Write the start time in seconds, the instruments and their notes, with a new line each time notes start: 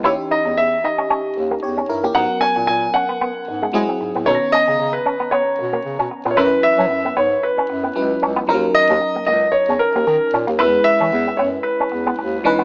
0.03 bass clarinet D#2, fm electric piano E3 C#4 D#4 G4, clean electric guitar E4, grand piano C#5
0.31 clean electric guitar D#4, grand piano D#5
0.45 bass clarinet E2, muted clean electric guitar stroke
0.57 bass clarinet E2, grand piano E5, muted clean electric guitar stroke
0.84 clean electric guitar D#4, grand piano D#5
0.98 clean electric guitar C#4
1.10 clean electric guitar C#4
1.36 bass clarinet D#2, muted clean electric guitar stroke
1.51 clean electric guitar A#3
1.63 bass clarinet E2, fm electric piano G4 C#5
1.77 clean electric guitar C#4
1.89 bass clarinet G2, fm electric piano E4 A#4, muted clean electric guitar stroke
2.04 clean electric guitar A#3, fm electric piano C#4 G4
2.15 bass clarinet G#2, fm electric piano F#3 B3 C#4 A#4, clean electric guitar D#4, grand piano F#5
2.41 clean electric guitar C#4, grand piano G#5
2.56 bass clarinet A#2, muted clean electric guitar stroke
2.67 bass clarinet A#2, grand piano G#5, muted clean electric guitar stroke
2.94 clean electric guitar C#4, grand piano F#5
3.09 clean electric guitar B3
3.21 clean electric guitar B3
3.48 bass clarinet G#2, muted clean electric guitar stroke
3.62 clean electric guitar G#3
3.73 fm electric piano F#3 C4 E4 G#4, bass clarinet G#3
3.89 clean electric guitar C4
4.01 bass clarinet G#2, muted clean electric guitar stroke
4.15 bass clarinet A2, clean electric guitar B3
4.26 bass clarinet B2, fm electric piano D#3 B3 C#4 A4, clean electric guitar D#4, grand piano C#5
4.35 fm electric piano A#5
4.52 clean electric guitar C#4, grand piano D#5
4.68 bass clarinet C#3, muted clean electric guitar stroke
4.80 bass clarinet C#3, muted clean electric guitar stroke
4.93 grand piano B4
5.06 clean electric guitar C#4
5.20 clean electric guitar B3
5.31 clean electric guitar B3, grand piano C#5
5.59 bass clarinet B2, muted clean electric guitar stroke
5.73 clean electric guitar A#3
5.85 bass clarinet C#3
5.99 bass clarinet B2, clean electric guitar C#4
6.11 muted clean electric guitar stroke
6.25 bass clarinet A#2, clean electric guitar B3
6.31 grand piano C#5
6.36 bass clarinet F#2, fm electric piano F#3 C#4 E4 A#4, clean electric guitar E4, grand piano B4
6.45 fm electric piano B4
6.63 grand piano E5, muted clean electric guitar stroke
6.78 bass clarinet F#3, clean electric guitar C#4
6.91 bass clarinet F#2, muted clean electric guitar stroke
7.05 clean electric guitar B3
7.17 bass clarinet G#2, clean electric guitar B3, grand piano C#5
7.43 grand piano B4
7.58 clean electric guitar C#4
7.70 bass clarinet F#2, muted clean electric guitar stroke
7.83 clean electric guitar B3
7.95 bass clarinet C#2, fm electric piano F#3 C#4 E4 B4, muted clean electric guitar stroke
8.22 bass clarinet C#2, clean electric guitar C#4
8.36 clean electric guitar B3
8.47 bass clarinet D#2, fm electric piano F3 C#4 D#4 A#4, clean electric guitar D#4
8.54 fm electric piano F#3
8.75 grand piano D#5, muted clean electric guitar stroke
8.89 bass clarinet D#2, clean electric guitar C#4
9.01 muted clean electric guitar stroke
9.16 clean electric guitar A#3
9.26 bass clarinet C#2, clean electric guitar A#3, grand piano D#5
9.52 grand piano C#5
9.68 bass clarinet E2, clean electric guitar C#4
9.79 grand piano A#4, muted clean electric guitar stroke
9.95 bass clarinet D#2, clean electric guitar A#3
10.07 bass clarinet D#3, muted clean electric guitar stroke
10.33 bass clarinet A#2, clean electric guitar C#4
10.47 bass clarinet D#2, clean electric guitar A#3
10.59 bass clarinet E2, fm electric piano F#3 C#4 E4 B4, clean electric guitar E4, grand piano B4
10.66 fm electric piano G#3
10.84 grand piano E5, muted clean electric guitar stroke
11.00 bass clarinet E3, clean electric guitar C#4
11.12 bass clarinet E2, muted clean electric guitar stroke
11.27 clean electric guitar B3
11.37 bass clarinet F#2, clean electric guitar B3, grand piano C#5
11.63 grand piano B4
11.80 clean electric guitar C#4
11.92 bass clarinet E2, muted clean electric guitar stroke
12.06 clean electric guitar B3
12.18 bass clarinet D#2, muted clean electric guitar stroke
12.44 bass clarinet C#2, fm electric piano E3 C#4 D#4 B4, clean electric guitar C#4
12.59 clean electric guitar B3